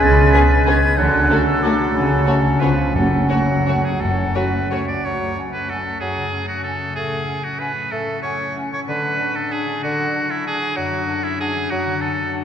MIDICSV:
0, 0, Header, 1, 13, 480
1, 0, Start_track
1, 0, Key_signature, 3, "minor"
1, 0, Tempo, 318810
1, 51, Time_signature, 3, 2, 24, 8
1, 3415, Tempo, 348837
1, 6775, Tempo, 330579
1, 8215, Tempo, 318134
1, 13975, Tempo, 312826
1, 18459, End_track
2, 0, Start_track
2, 0, Title_t, "Flute"
2, 0, Program_c, 0, 73
2, 35, Note_on_c, 0, 93, 92
2, 483, Note_off_c, 0, 93, 0
2, 492, Note_on_c, 0, 95, 92
2, 582, Note_off_c, 0, 95, 0
2, 752, Note_on_c, 0, 93, 84
2, 992, Note_off_c, 0, 93, 0
2, 1001, Note_on_c, 0, 92, 82
2, 1470, Note_on_c, 0, 90, 85
2, 1492, Note_off_c, 0, 92, 0
2, 2187, Note_off_c, 0, 90, 0
2, 2196, Note_on_c, 0, 88, 76
2, 2449, Note_on_c, 0, 86, 72
2, 2472, Note_off_c, 0, 88, 0
2, 2918, Note_off_c, 0, 86, 0
2, 2927, Note_on_c, 0, 83, 71
2, 3417, Note_on_c, 0, 81, 61
2, 3437, Note_off_c, 0, 83, 0
2, 3886, Note_on_c, 0, 80, 60
2, 3906, Note_off_c, 0, 81, 0
2, 4349, Note_off_c, 0, 80, 0
2, 4357, Note_on_c, 0, 78, 57
2, 6972, Note_off_c, 0, 78, 0
2, 7750, Note_on_c, 0, 78, 37
2, 7837, Note_off_c, 0, 78, 0
2, 8219, Note_on_c, 0, 78, 36
2, 8309, Note_off_c, 0, 78, 0
2, 9158, Note_on_c, 0, 78, 40
2, 9249, Note_off_c, 0, 78, 0
2, 9641, Note_on_c, 0, 78, 37
2, 9731, Note_off_c, 0, 78, 0
2, 10589, Note_on_c, 0, 78, 39
2, 10680, Note_off_c, 0, 78, 0
2, 11100, Note_on_c, 0, 78, 40
2, 11191, Note_off_c, 0, 78, 0
2, 12046, Note_on_c, 0, 78, 40
2, 12136, Note_off_c, 0, 78, 0
2, 12534, Note_on_c, 0, 78, 41
2, 12624, Note_off_c, 0, 78, 0
2, 13485, Note_on_c, 0, 78, 43
2, 13575, Note_off_c, 0, 78, 0
2, 13987, Note_on_c, 0, 78, 41
2, 14079, Note_off_c, 0, 78, 0
2, 14945, Note_on_c, 0, 78, 45
2, 15037, Note_off_c, 0, 78, 0
2, 15435, Note_on_c, 0, 78, 46
2, 15527, Note_off_c, 0, 78, 0
2, 16369, Note_on_c, 0, 78, 49
2, 16461, Note_off_c, 0, 78, 0
2, 16877, Note_on_c, 0, 78, 44
2, 16969, Note_off_c, 0, 78, 0
2, 17805, Note_on_c, 0, 78, 49
2, 17897, Note_off_c, 0, 78, 0
2, 18308, Note_on_c, 0, 78, 46
2, 18400, Note_off_c, 0, 78, 0
2, 18459, End_track
3, 0, Start_track
3, 0, Title_t, "Violin section"
3, 0, Program_c, 1, 48
3, 503, Note_on_c, 1, 71, 53
3, 623, Note_off_c, 1, 71, 0
3, 1010, Note_on_c, 1, 71, 53
3, 1130, Note_off_c, 1, 71, 0
3, 1957, Note_on_c, 1, 69, 52
3, 2077, Note_off_c, 1, 69, 0
3, 2459, Note_on_c, 1, 69, 49
3, 2580, Note_off_c, 1, 69, 0
3, 3415, Note_on_c, 1, 73, 44
3, 3525, Note_off_c, 1, 73, 0
3, 3891, Note_on_c, 1, 73, 43
3, 4001, Note_off_c, 1, 73, 0
3, 4827, Note_on_c, 1, 73, 42
3, 4937, Note_off_c, 1, 73, 0
3, 5352, Note_on_c, 1, 73, 36
3, 5462, Note_off_c, 1, 73, 0
3, 6277, Note_on_c, 1, 73, 37
3, 6387, Note_off_c, 1, 73, 0
3, 6777, Note_on_c, 1, 73, 38
3, 6894, Note_off_c, 1, 73, 0
3, 18459, End_track
4, 0, Start_track
4, 0, Title_t, "Oboe"
4, 0, Program_c, 2, 68
4, 0, Note_on_c, 2, 71, 68
4, 1429, Note_off_c, 2, 71, 0
4, 1474, Note_on_c, 2, 69, 64
4, 3868, Note_on_c, 2, 71, 46
4, 3888, Note_off_c, 2, 69, 0
4, 4344, Note_off_c, 2, 71, 0
4, 4357, Note_on_c, 2, 69, 42
4, 4780, Note_off_c, 2, 69, 0
4, 4830, Note_on_c, 2, 66, 53
4, 5593, Note_on_c, 2, 68, 48
4, 5614, Note_off_c, 2, 66, 0
4, 5810, Note_on_c, 2, 69, 51
4, 5831, Note_off_c, 2, 68, 0
4, 6290, Note_on_c, 2, 71, 54
4, 6311, Note_off_c, 2, 69, 0
4, 6762, Note_off_c, 2, 71, 0
4, 6770, Note_on_c, 2, 73, 45
4, 7014, Note_off_c, 2, 73, 0
4, 7023, Note_on_c, 2, 74, 58
4, 7266, Note_on_c, 2, 73, 55
4, 7288, Note_off_c, 2, 74, 0
4, 7758, Note_off_c, 2, 73, 0
4, 7966, Note_on_c, 2, 71, 53
4, 8207, Note_on_c, 2, 69, 50
4, 8229, Note_off_c, 2, 71, 0
4, 8663, Note_off_c, 2, 69, 0
4, 8672, Note_on_c, 2, 68, 55
4, 9374, Note_off_c, 2, 68, 0
4, 9391, Note_on_c, 2, 66, 53
4, 9615, Note_off_c, 2, 66, 0
4, 9625, Note_on_c, 2, 69, 57
4, 10095, Note_off_c, 2, 69, 0
4, 10107, Note_on_c, 2, 68, 60
4, 10840, Note_on_c, 2, 66, 53
4, 10862, Note_off_c, 2, 68, 0
4, 11070, Note_on_c, 2, 71, 62
4, 11093, Note_off_c, 2, 66, 0
4, 11557, Note_on_c, 2, 69, 55
4, 11579, Note_off_c, 2, 71, 0
4, 12012, Note_off_c, 2, 69, 0
4, 12022, Note_on_c, 2, 73, 68
4, 12524, Note_off_c, 2, 73, 0
4, 12787, Note_on_c, 2, 73, 66
4, 12890, Note_off_c, 2, 73, 0
4, 13022, Note_on_c, 2, 71, 71
4, 13726, Note_on_c, 2, 69, 65
4, 13749, Note_off_c, 2, 71, 0
4, 13973, Note_on_c, 2, 68, 64
4, 13996, Note_off_c, 2, 69, 0
4, 14445, Note_off_c, 2, 68, 0
4, 14455, Note_on_c, 2, 66, 69
4, 15183, Note_on_c, 2, 64, 62
4, 15206, Note_off_c, 2, 66, 0
4, 15427, Note_off_c, 2, 64, 0
4, 15435, Note_on_c, 2, 68, 74
4, 15880, Note_on_c, 2, 66, 64
4, 15903, Note_off_c, 2, 68, 0
4, 16606, Note_on_c, 2, 64, 64
4, 16629, Note_off_c, 2, 66, 0
4, 16855, Note_off_c, 2, 64, 0
4, 16865, Note_on_c, 2, 68, 74
4, 17326, Note_on_c, 2, 66, 63
4, 17349, Note_off_c, 2, 68, 0
4, 17801, Note_on_c, 2, 69, 69
4, 17824, Note_off_c, 2, 66, 0
4, 18297, Note_off_c, 2, 69, 0
4, 18459, End_track
5, 0, Start_track
5, 0, Title_t, "Violin section"
5, 0, Program_c, 3, 48
5, 505, Note_on_c, 3, 68, 52
5, 625, Note_off_c, 3, 68, 0
5, 1012, Note_on_c, 3, 68, 54
5, 1133, Note_off_c, 3, 68, 0
5, 1975, Note_on_c, 3, 66, 50
5, 2095, Note_off_c, 3, 66, 0
5, 2473, Note_on_c, 3, 66, 48
5, 2594, Note_off_c, 3, 66, 0
5, 3415, Note_on_c, 3, 66, 46
5, 3525, Note_off_c, 3, 66, 0
5, 3880, Note_on_c, 3, 65, 41
5, 3990, Note_off_c, 3, 65, 0
5, 4828, Note_on_c, 3, 66, 39
5, 4939, Note_off_c, 3, 66, 0
5, 5349, Note_on_c, 3, 66, 39
5, 5459, Note_off_c, 3, 66, 0
5, 6297, Note_on_c, 3, 66, 37
5, 6408, Note_off_c, 3, 66, 0
5, 6792, Note_on_c, 3, 66, 36
5, 6908, Note_off_c, 3, 66, 0
5, 18459, End_track
6, 0, Start_track
6, 0, Title_t, "French horn section"
6, 0, Program_c, 4, 60
6, 528, Note_on_c, 4, 68, 54
6, 532, Note_on_c, 4, 59, 52
6, 705, Note_off_c, 4, 68, 0
6, 708, Note_off_c, 4, 59, 0
6, 1009, Note_on_c, 4, 59, 53
6, 1020, Note_on_c, 4, 68, 56
6, 1180, Note_off_c, 4, 59, 0
6, 1189, Note_off_c, 4, 68, 0
6, 1962, Note_on_c, 4, 57, 53
6, 1972, Note_on_c, 4, 66, 51
6, 2143, Note_off_c, 4, 57, 0
6, 2152, Note_off_c, 4, 66, 0
6, 2477, Note_on_c, 4, 57, 50
6, 2477, Note_on_c, 4, 66, 52
6, 2643, Note_off_c, 4, 57, 0
6, 2643, Note_off_c, 4, 66, 0
6, 3423, Note_on_c, 4, 57, 43
6, 3425, Note_on_c, 4, 66, 47
6, 3591, Note_off_c, 4, 57, 0
6, 3593, Note_off_c, 4, 66, 0
6, 3872, Note_on_c, 4, 59, 41
6, 3880, Note_on_c, 4, 65, 42
6, 4045, Note_off_c, 4, 59, 0
6, 4051, Note_off_c, 4, 65, 0
6, 4837, Note_on_c, 4, 57, 39
6, 4838, Note_on_c, 4, 66, 41
6, 5019, Note_off_c, 4, 57, 0
6, 5021, Note_off_c, 4, 66, 0
6, 5360, Note_on_c, 4, 66, 41
6, 5368, Note_on_c, 4, 57, 39
6, 5526, Note_off_c, 4, 66, 0
6, 5532, Note_off_c, 4, 57, 0
6, 6285, Note_on_c, 4, 66, 38
6, 6287, Note_on_c, 4, 57, 38
6, 6462, Note_off_c, 4, 66, 0
6, 6464, Note_off_c, 4, 57, 0
6, 6768, Note_on_c, 4, 57, 38
6, 6769, Note_on_c, 4, 66, 37
6, 6948, Note_off_c, 4, 57, 0
6, 6949, Note_off_c, 4, 66, 0
6, 18459, End_track
7, 0, Start_track
7, 0, Title_t, "Clarinet"
7, 0, Program_c, 5, 71
7, 0, Note_on_c, 5, 61, 74
7, 1423, Note_off_c, 5, 61, 0
7, 1460, Note_on_c, 5, 62, 58
7, 2929, Note_on_c, 5, 61, 53
7, 2951, Note_off_c, 5, 62, 0
7, 4348, Note_off_c, 5, 61, 0
7, 4356, Note_on_c, 5, 61, 50
7, 6972, Note_off_c, 5, 61, 0
7, 7730, Note_on_c, 5, 61, 34
7, 7906, Note_off_c, 5, 61, 0
7, 8227, Note_on_c, 5, 61, 37
7, 8391, Note_off_c, 5, 61, 0
7, 9142, Note_on_c, 5, 61, 35
7, 9321, Note_off_c, 5, 61, 0
7, 9655, Note_on_c, 5, 61, 37
7, 9823, Note_off_c, 5, 61, 0
7, 10582, Note_on_c, 5, 61, 37
7, 10763, Note_off_c, 5, 61, 0
7, 11079, Note_on_c, 5, 61, 40
7, 11252, Note_off_c, 5, 61, 0
7, 12037, Note_on_c, 5, 61, 39
7, 12219, Note_off_c, 5, 61, 0
7, 12550, Note_on_c, 5, 61, 41
7, 12721, Note_off_c, 5, 61, 0
7, 13482, Note_on_c, 5, 62, 42
7, 13660, Note_off_c, 5, 62, 0
7, 13979, Note_on_c, 5, 62, 40
7, 14152, Note_off_c, 5, 62, 0
7, 14937, Note_on_c, 5, 62, 45
7, 15114, Note_off_c, 5, 62, 0
7, 15430, Note_on_c, 5, 62, 45
7, 15596, Note_off_c, 5, 62, 0
7, 16366, Note_on_c, 5, 62, 43
7, 16544, Note_off_c, 5, 62, 0
7, 16863, Note_on_c, 5, 62, 48
7, 17031, Note_off_c, 5, 62, 0
7, 17792, Note_on_c, 5, 62, 47
7, 17973, Note_off_c, 5, 62, 0
7, 18271, Note_on_c, 5, 62, 44
7, 18445, Note_off_c, 5, 62, 0
7, 18459, End_track
8, 0, Start_track
8, 0, Title_t, "Harp"
8, 0, Program_c, 6, 46
8, 0, Note_on_c, 6, 59, 54
8, 0, Note_on_c, 6, 61, 49
8, 0, Note_on_c, 6, 68, 55
8, 0, Note_on_c, 6, 71, 51
8, 53, Note_on_c, 6, 49, 60
8, 251, Note_off_c, 6, 59, 0
8, 269, Note_on_c, 6, 59, 51
8, 483, Note_off_c, 6, 61, 0
8, 743, Note_off_c, 6, 71, 0
8, 761, Note_on_c, 6, 71, 49
8, 989, Note_off_c, 6, 68, 0
8, 1251, Note_on_c, 6, 61, 49
8, 1476, Note_on_c, 6, 50, 61
8, 1499, Note_off_c, 6, 59, 0
8, 1500, Note_off_c, 6, 71, 0
8, 1501, Note_off_c, 6, 61, 0
8, 1503, Note_off_c, 6, 49, 0
8, 1727, Note_on_c, 6, 57, 47
8, 1980, Note_on_c, 6, 66, 46
8, 2218, Note_on_c, 6, 69, 48
8, 2455, Note_off_c, 6, 66, 0
8, 2473, Note_on_c, 6, 66, 47
8, 2692, Note_off_c, 6, 57, 0
8, 2710, Note_on_c, 6, 57, 42
8, 2937, Note_on_c, 6, 49, 52
8, 2947, Note_off_c, 6, 50, 0
8, 3169, Note_on_c, 6, 61, 39
8, 3395, Note_off_c, 6, 66, 0
8, 3413, Note_on_c, 6, 66, 40
8, 3652, Note_on_c, 6, 73, 38
8, 3871, Note_off_c, 6, 49, 0
8, 3887, Note_on_c, 6, 49, 49
8, 3908, Note_off_c, 6, 66, 0
8, 3908, Note_off_c, 6, 69, 0
8, 3912, Note_off_c, 6, 57, 0
8, 4109, Note_off_c, 6, 61, 0
8, 4123, Note_on_c, 6, 61, 33
8, 4354, Note_on_c, 6, 42, 44
8, 4372, Note_off_c, 6, 49, 0
8, 4590, Note_on_c, 6, 57, 36
8, 4827, Note_off_c, 6, 61, 0
8, 4844, Note_on_c, 6, 61, 36
8, 5344, Note_on_c, 6, 66, 34
8, 5570, Note_off_c, 6, 61, 0
8, 5586, Note_on_c, 6, 61, 34
8, 5792, Note_off_c, 6, 42, 0
8, 5809, Note_on_c, 6, 42, 42
8, 6031, Note_off_c, 6, 57, 0
8, 6048, Note_on_c, 6, 57, 32
8, 6268, Note_off_c, 6, 61, 0
8, 6284, Note_on_c, 6, 61, 32
8, 6533, Note_on_c, 6, 69, 34
8, 6759, Note_off_c, 6, 66, 0
8, 6776, Note_on_c, 6, 66, 35
8, 7011, Note_off_c, 6, 61, 0
8, 7028, Note_on_c, 6, 61, 32
8, 7251, Note_off_c, 6, 42, 0
8, 7269, Note_on_c, 6, 42, 39
8, 7487, Note_off_c, 6, 57, 0
8, 7505, Note_on_c, 6, 57, 33
8, 7724, Note_off_c, 6, 66, 0
8, 7741, Note_on_c, 6, 66, 33
8, 7965, Note_off_c, 6, 69, 0
8, 7983, Note_on_c, 6, 69, 35
8, 8209, Note_off_c, 6, 66, 0
8, 8227, Note_on_c, 6, 66, 35
8, 8453, Note_off_c, 6, 57, 0
8, 8471, Note_on_c, 6, 57, 34
8, 8674, Note_off_c, 6, 42, 0
8, 8692, Note_on_c, 6, 42, 42
8, 8915, Note_on_c, 6, 49, 32
8, 9136, Note_off_c, 6, 66, 0
8, 9154, Note_on_c, 6, 66, 33
8, 9179, Note_off_c, 6, 73, 0
8, 9393, Note_off_c, 6, 69, 0
8, 9411, Note_on_c, 6, 69, 36
8, 9629, Note_off_c, 6, 66, 0
8, 9647, Note_on_c, 6, 66, 38
8, 9882, Note_off_c, 6, 57, 0
8, 9900, Note_on_c, 6, 57, 33
8, 10130, Note_on_c, 6, 45, 43
8, 10137, Note_off_c, 6, 49, 0
8, 10138, Note_off_c, 6, 42, 0
8, 10358, Note_on_c, 6, 54, 37
8, 10583, Note_off_c, 6, 66, 0
8, 10601, Note_on_c, 6, 66, 34
8, 10835, Note_off_c, 6, 61, 0
8, 10853, Note_on_c, 6, 61, 38
8, 11080, Note_off_c, 6, 66, 0
8, 11098, Note_on_c, 6, 66, 40
8, 11317, Note_off_c, 6, 54, 0
8, 11335, Note_on_c, 6, 54, 34
8, 11538, Note_off_c, 6, 45, 0
8, 11556, Note_on_c, 6, 45, 45
8, 11775, Note_off_c, 6, 57, 0
8, 11793, Note_on_c, 6, 57, 36
8, 12021, Note_off_c, 6, 66, 0
8, 12039, Note_on_c, 6, 66, 38
8, 12276, Note_off_c, 6, 61, 0
8, 12294, Note_on_c, 6, 61, 38
8, 12521, Note_off_c, 6, 66, 0
8, 12539, Note_on_c, 6, 66, 42
8, 12765, Note_off_c, 6, 54, 0
8, 12783, Note_on_c, 6, 54, 37
8, 13009, Note_on_c, 6, 50, 51
8, 13033, Note_off_c, 6, 45, 0
8, 13035, Note_off_c, 6, 61, 0
8, 13247, Note_on_c, 6, 62, 38
8, 13472, Note_off_c, 6, 66, 0
8, 13490, Note_on_c, 6, 66, 40
8, 13741, Note_on_c, 6, 74, 42
8, 13961, Note_off_c, 6, 66, 0
8, 13979, Note_on_c, 6, 66, 40
8, 14215, Note_off_c, 6, 62, 0
8, 14234, Note_on_c, 6, 62, 37
8, 14452, Note_off_c, 6, 50, 0
8, 14471, Note_on_c, 6, 50, 49
8, 14688, Note_off_c, 6, 54, 0
8, 14706, Note_on_c, 6, 54, 40
8, 14929, Note_off_c, 6, 66, 0
8, 14948, Note_on_c, 6, 66, 40
8, 15170, Note_off_c, 6, 74, 0
8, 15318, Note_off_c, 6, 69, 0
8, 15419, Note_off_c, 6, 66, 0
8, 15438, Note_on_c, 6, 66, 44
8, 15649, Note_off_c, 6, 62, 0
8, 15668, Note_on_c, 6, 62, 43
8, 15894, Note_on_c, 6, 42, 51
8, 15905, Note_off_c, 6, 57, 0
8, 15913, Note_off_c, 6, 50, 0
8, 16106, Note_off_c, 6, 54, 0
8, 16124, Note_on_c, 6, 54, 42
8, 16353, Note_off_c, 6, 66, 0
8, 16372, Note_on_c, 6, 66, 44
8, 16608, Note_off_c, 6, 62, 0
8, 16627, Note_on_c, 6, 62, 44
8, 16849, Note_off_c, 6, 66, 0
8, 16868, Note_on_c, 6, 66, 46
8, 17091, Note_off_c, 6, 54, 0
8, 17110, Note_on_c, 6, 54, 42
8, 17321, Note_off_c, 6, 42, 0
8, 17339, Note_on_c, 6, 42, 52
8, 17563, Note_on_c, 6, 50, 46
8, 17786, Note_off_c, 6, 66, 0
8, 17805, Note_on_c, 6, 66, 44
8, 18030, Note_off_c, 6, 62, 0
8, 18049, Note_on_c, 6, 62, 46
8, 18282, Note_off_c, 6, 66, 0
8, 18301, Note_on_c, 6, 66, 46
8, 18459, Note_off_c, 6, 42, 0
8, 18459, Note_off_c, 6, 50, 0
8, 18459, Note_off_c, 6, 54, 0
8, 18459, Note_off_c, 6, 62, 0
8, 18459, Note_off_c, 6, 66, 0
8, 18459, End_track
9, 0, Start_track
9, 0, Title_t, "Viola section"
9, 0, Program_c, 7, 48
9, 514, Note_on_c, 7, 61, 57
9, 635, Note_off_c, 7, 61, 0
9, 1025, Note_on_c, 7, 61, 55
9, 1145, Note_off_c, 7, 61, 0
9, 1975, Note_on_c, 7, 57, 51
9, 2096, Note_off_c, 7, 57, 0
9, 2483, Note_on_c, 7, 57, 48
9, 2603, Note_off_c, 7, 57, 0
9, 3423, Note_on_c, 7, 57, 44
9, 3533, Note_off_c, 7, 57, 0
9, 3902, Note_on_c, 7, 59, 43
9, 4012, Note_off_c, 7, 59, 0
9, 4847, Note_on_c, 7, 57, 41
9, 4957, Note_off_c, 7, 57, 0
9, 5363, Note_on_c, 7, 57, 42
9, 5473, Note_off_c, 7, 57, 0
9, 6287, Note_on_c, 7, 57, 37
9, 6397, Note_off_c, 7, 57, 0
9, 6777, Note_on_c, 7, 57, 39
9, 6894, Note_off_c, 7, 57, 0
9, 18459, End_track
10, 0, Start_track
10, 0, Title_t, "Bassoon"
10, 0, Program_c, 8, 70
10, 0, Note_on_c, 8, 56, 67
10, 1426, Note_off_c, 8, 56, 0
10, 1485, Note_on_c, 8, 54, 60
10, 3895, Note_on_c, 8, 53, 48
10, 3915, Note_off_c, 8, 54, 0
10, 4369, Note_on_c, 8, 54, 44
10, 4389, Note_off_c, 8, 53, 0
10, 7034, Note_off_c, 8, 54, 0
10, 7279, Note_on_c, 8, 54, 44
10, 7657, Note_off_c, 8, 54, 0
10, 8680, Note_on_c, 8, 54, 46
10, 9062, Note_off_c, 8, 54, 0
10, 10128, Note_on_c, 8, 57, 47
10, 10512, Note_off_c, 8, 57, 0
10, 11568, Note_on_c, 8, 57, 51
10, 11961, Note_off_c, 8, 57, 0
10, 13019, Note_on_c, 8, 50, 52
10, 13406, Note_off_c, 8, 50, 0
10, 14467, Note_on_c, 8, 50, 56
10, 14857, Note_off_c, 8, 50, 0
10, 15884, Note_on_c, 8, 54, 58
10, 16278, Note_off_c, 8, 54, 0
10, 17344, Note_on_c, 8, 54, 58
10, 17723, Note_off_c, 8, 54, 0
10, 18459, End_track
11, 0, Start_track
11, 0, Title_t, "Cello section"
11, 0, Program_c, 10, 48
11, 40, Note_on_c, 10, 49, 71
11, 425, Note_off_c, 10, 49, 0
11, 1482, Note_on_c, 10, 50, 67
11, 1884, Note_off_c, 10, 50, 0
11, 2938, Note_on_c, 10, 49, 58
11, 3334, Note_off_c, 10, 49, 0
11, 3897, Note_on_c, 10, 49, 47
11, 4283, Note_off_c, 10, 49, 0
11, 4349, Note_on_c, 10, 42, 48
11, 4752, Note_off_c, 10, 42, 0
11, 5800, Note_on_c, 10, 42, 46
11, 6197, Note_off_c, 10, 42, 0
11, 18459, End_track
12, 0, Start_track
12, 0, Title_t, "Timpani"
12, 0, Program_c, 11, 47
12, 4355, Note_on_c, 11, 42, 67
12, 5043, Note_off_c, 11, 42, 0
12, 18459, End_track
13, 0, Start_track
13, 0, Title_t, "Double bass section"
13, 0, Program_c, 12, 48
13, 44, Note_on_c, 12, 37, 66
13, 427, Note_off_c, 12, 37, 0
13, 1477, Note_on_c, 12, 38, 67
13, 1881, Note_off_c, 12, 38, 0
13, 2935, Note_on_c, 12, 37, 54
13, 3332, Note_off_c, 12, 37, 0
13, 3888, Note_on_c, 12, 37, 52
13, 4279, Note_off_c, 12, 37, 0
13, 4352, Note_on_c, 12, 30, 48
13, 4753, Note_off_c, 12, 30, 0
13, 5811, Note_on_c, 12, 30, 46
13, 6202, Note_off_c, 12, 30, 0
13, 18459, End_track
0, 0, End_of_file